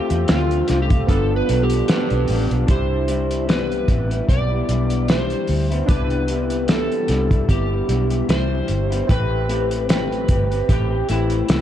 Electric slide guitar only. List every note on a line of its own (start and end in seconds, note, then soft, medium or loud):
0.00 0.27 G4 medium
0.29 0.79 F4 medium
0.82 1.07 G4 medium
1.09 1.36 A4 loud
1.36 1.63 B4 loud
1.63 1.88 G4 medium
1.89 2.66 G4 medium
1.89 2.65 B4 loud
2.70 3.46 C5 medium
3.49 4.25 B4 loud
4.29 5.10 D5 loud
5.10 5.90 C5 medium
5.91 6.66 B4 medium
6.71 7.50 A4 medium
7.51 8.26 G4 medium
8.30 9.06 C5 loud
9.11 9.89 B4 medium
9.90 10.72 B4 medium
10.70 11.07 G4 medium
11.11 11.49 E4 medium
11.50 11.61 E4 medium